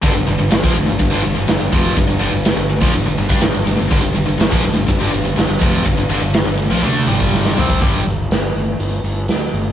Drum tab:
RD |x-x-x-x-x-x-x-x-|x-x-x-x-x-x-x-x-|x-x-x-x-x-x-x-x-|x-x-x-x---------|
HH |----------------|----------------|----------------|----------------|
SD |----o-------o--o|----o-------o--o|----o-------o---|----o-------oo--|
T1 |----------------|----------------|----------------|--------oo------|
T2 |----------------|----------------|----------------|----------o-----|
FT |----------------|----------------|----------------|--------------o-|
BD |o----o--o-----o-|o------o---o----|o----o--o-----o-|o----------o---o|

RD |----------------|
HH |x-x-x-x-x-x-x-x-|
SD |-o--o-------o---|
T1 |----------------|
T2 |----------------|
FT |----------------|
BD |o---------------|